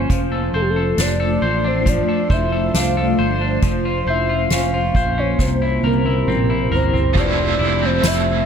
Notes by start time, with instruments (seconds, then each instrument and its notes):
Already playing: clean electric guitar C#4 F4 C5
0.08 picked electric bass F1, clean electric guitar F3, ambient pad A3 D4 F4 C5, kick, closed hi-hat
0.32 clean electric guitar A4
0.53 picked electric bass F1, soft synth lead A4, clean electric guitar C5
0.62 soft synth lead G4
0.70 soft synth lead A4
0.76 clean electric guitar A4
0.98 picked electric bass F1, clean electric guitar D4, soft synth lead D5, snare, closed hi-hat
1.20 clean electric guitar A4
1.42 picked electric bass A1, clean electric guitar C5
1.64 clean electric guitar D4, soft synth lead C5
1.86 clean electric guitar F3, soft synth lead D5, kick, closed hi-hat
2.08 clean electric guitar A4
2.30 picked electric bass F1, clean electric guitar C5, soft synth lead E5, kick
2.52 clean electric guitar A4
2.74 picked electric bass C2, clean electric guitar D4, soft synth lead F5, snare, closed hi-hat
2.97 clean electric guitar A4
3.19 picked electric bass G1, clean electric guitar C5
3.41 clean electric guitar D4
3.62 picked electric bass F1, clean electric guitar F3, ambient pad A#3 C#4 F4, kick, closed hi-hat
3.85 clean electric guitar F4
4.07 picked electric bass F1, clean electric guitar C5, soft synth lead E5
4.29 clean electric guitar F4
4.50 picked electric bass F1, clean electric guitar C#4, soft synth lead F5, snare, closed hi-hat
4.74 clean electric guitar F4
4.95 picked electric bass A#1, clean electric guitar C5, kick
5.18 clean electric guitar C#4, soft synth lead C#5
5.39 picked electric bass C2, clean electric guitar C3, ambient pad E4 G4, soft synth lead C5, kick, snare
5.62 clean electric guitar E4
5.83 picked electric bass C2, clean electric guitar A#4, soft synth lead A#4, high tom
6.05 clean electric guitar E4, high tom
6.27 picked electric bass A#1, clean electric guitar C4, mid tom
6.50 clean electric guitar E4
6.71 picked electric bass G1, clean electric guitar A#4, floor tom
6.75 soft synth lead C5
6.93 clean electric guitar C4, floor tom
7.13 picked electric bass F1, overdriven electric guitar F3 A3, clean electric guitar F3, ambient pad C5 E5 A5 E6, kick, crash
7.19 overdriven electric guitar C4 E4, soft synth lead D5
7.37 clean electric guitar C4
7.59 picked electric bass F1, clean electric guitar E4
7.82 clean electric guitar C4, soft synth lead C5
8.03 picked electric bass F1, clean electric guitar E4, snare, tambourine
8.07 soft synth lead E5